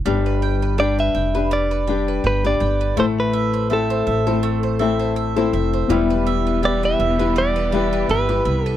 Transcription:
0.05 G1 G3 D4 G4 B4
0.26 B4
0.42 G5
0.62 B4
0.78 G3 D4 G4 B4 D5 G5
0.99 B4 E5
1.15 F1 G5
1.35 D4 G4 B4
1.51 G3 D5
1.71 B4
1.87 G3 D4 G4 B4 G5
2.08 B4
2.24 G1 B4 G5
2.44 D4 G4 B4 D5
2.60 G1 G5
2.81 B4
2.97 A1 A3 C4 E4 A4 C5
3.20 B4
3.33 E5
3.54 C5
3.70 A3 C4 E4 A4 E5
3.90 C5
4.07 A1 E5
4.27 A3 C4 E4 A4 C5
4.43 A3
4.63 C5
4.79 A3 C4 E4 A4 E5
4.99 C5
5.16 E5
5.36 A3 C4 E4 A4 C5
5.53 F1 E5
5.73 C5
5.88 E1 E3 G3 B3 E4 G4 B4
5.92 E5
6.10 B4
6.27 E5
6.47 B4
6.62 G3 E4 G4 B4 D5 E5
6.83 B4 E5
6.99 E1 E5
7.19 E4 G4 B4
7.36 G3 D5
7.56 B4
7.72 G3 E4 G4 B4 E5
7.93 B4
8.09 G1 B4 E5
8.29 E4 G4 B4
8.45 C2 E5
8.66 A4 B4

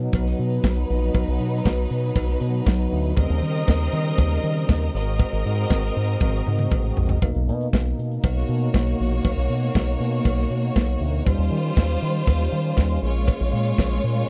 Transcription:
Already playing: F#3 B3 D#4
0.00 closed hi-hat
0.13 B1 F#3 D#4 B4, kick, closed hi-hat, cowbell
0.25 snare, closed hi-hat
0.37 B2, closed hi-hat
0.50 closed hi-hat
0.64 B1, kick, snare, cowbell
0.77 closed hi-hat
0.90 A#1, open hi-hat
1.01 closed hi-hat
1.14 B1, kick, closed hi-hat, cowbell
1.28 B1, closed hi-hat
1.40 B2, closed hi-hat
1.53 closed hi-hat
1.65 B1, kick, snare, cowbell
1.78 closed hi-hat
1.91 B2, closed hi-hat
2.03 closed hi-hat
2.16 B1, kick, closed hi-hat, cowbell
2.28 snare, closed hi-hat
2.40 B2, closed hi-hat
2.54 closed hi-hat
2.66 B1, kick, snare, cowbell
2.81 closed hi-hat
2.92 D2, open hi-hat
3.04 closed hi-hat
3.17 D#2 C#3 G3 C4 A#4 D#5, kick, closed hi-hat, cowbell
3.30 D#2, closed hi-hat
3.42 D#3, closed hi-hat
3.56 closed hi-hat
3.68 D#2, kick, snare, cowbell
3.81 closed hi-hat
3.93 D#3, closed hi-hat
4.06 closed hi-hat
4.18 D#2, kick, closed hi-hat, cowbell
4.31 snare, closed hi-hat
4.43 D#3, closed hi-hat
4.56 closed hi-hat
4.69 D#2, kick, snare, cowbell
4.82 closed hi-hat
4.94 G#1 G#3 C4 F#4 A#4 D#5, open hi-hat
5.06 closed hi-hat
5.19 kick, closed hi-hat, cowbell
5.33 G#1, closed hi-hat
5.45 G#2, closed hi-hat
5.58 closed hi-hat
5.70 G#1, kick, snare, cowbell
5.83 closed hi-hat
5.96 G#2, open hi-hat
6.08 closed hi-hat
6.21 G#1, kick, high tom, cowbell
6.47 G#2, mid tom
6.59 mid tom
6.71 A1, kick, mid tom, cowbell
6.97 A#1, floor tom
7.09 floor tom
7.22 B1 B2 A#3 D#4, kick, closed hi-hat, cowbell
7.35 B1, closed hi-hat
7.47 B2, closed hi-hat
7.61 closed hi-hat
7.73 B1, kick, snare, cowbell
7.86 closed hi-hat
7.99 B2, closed hi-hat
8.11 closed hi-hat
8.23 B1 A#3 F#4 C#5, kick, closed hi-hat, cowbell
8.36 snare, closed hi-hat
8.49 B2, closed hi-hat
8.62 closed hi-hat
8.74 B1, kick, snare, cowbell
8.88 closed hi-hat
9.00 A#1, open hi-hat
9.12 closed hi-hat
9.25 B1, kick, closed hi-hat, cowbell
9.37 B1, closed hi-hat
9.49 B2, closed hi-hat
9.63 closed hi-hat
9.75 B1, kick, snare, cowbell
9.88 closed hi-hat
10.00 B2, closed hi-hat
10.13 closed hi-hat
10.25 B1, kick, closed hi-hat, cowbell
10.39 snare
10.50 B2, closed hi-hat
10.63 closed hi-hat
10.76 B1, kick, snare, cowbell
10.90 closed hi-hat
11.01 D2, open hi-hat
11.13 closed hi-hat
11.25 D#2 G3 C#4 F4 C5, kick, closed hi-hat, cowbell
11.38 D#2, closed hi-hat
11.51 D#3, closed hi-hat
11.65 closed hi-hat
11.77 D#2, kick, snare, cowbell
11.89 closed hi-hat
12.02 D#3, closed hi-hat
12.15 closed hi-hat
12.27 D#2, kick, closed hi-hat, cowbell
12.41 snare
12.51 D#3, closed hi-hat
12.64 closed hi-hat
12.77 D#2, kick, snare, cowbell
12.91 closed hi-hat
13.02 A#1 G#3 A#3 F4 C#5, open hi-hat
13.14 closed hi-hat
13.27 kick, closed hi-hat, cowbell
13.40 A#1, closed hi-hat
13.53 A#2, closed hi-hat
13.66 closed hi-hat
13.78 A#1, kick, snare, cowbell
13.91 closed hi-hat
14.04 A#2, open hi-hat
14.16 closed hi-hat

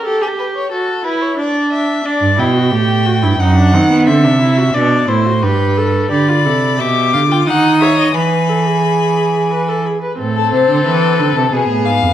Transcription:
0.05 G4 A4
0.21 G4 A4
0.39 B4
0.55 C#5
0.72 F#4 A4
1.04 E4 B4
1.22 C#5
1.38 D4 D5
1.73 E5
2.05 D4 D5
2.22 G2
2.38 B2 E4 G5
2.55 F#4
2.72 A2 G4
3.06 F#4
3.22 G2 E4
3.39 F#2 D#4 F#5
3.57 D4
3.73 D#3 C4
3.90 B3
4.07 D3 C4 E5
4.23 C3 D4
4.40 E4
4.57 F#4
4.74 B2 D4 D5
5.08 A2 E4 C5
5.26 F#4
5.42 G2 G4 B4
5.77 A4
6.11 D3 G4 D5 B5
6.28 F4
6.45 C3 A4
6.79 B2 G4 E5 D6
7.13 D3 F5
7.30 F4 G5
7.47 D#3 D#4 F#5 D#6
7.81 C#5 E5
7.99 D#5
8.14 E3 B4 G#5 B5
8.49 A4
8.65 G#4
9.51 B4
9.68 A4
9.85 G#4
10.02 B4
10.19 A2 C4 A4
10.36 A4
10.52 C3 C5
10.69 D3
10.86 E3 B4
11.19 D3
11.36 C3 A4
11.52 B2 B3 G#4
11.69 A2
11.85 G#2 F5
12.02 F2

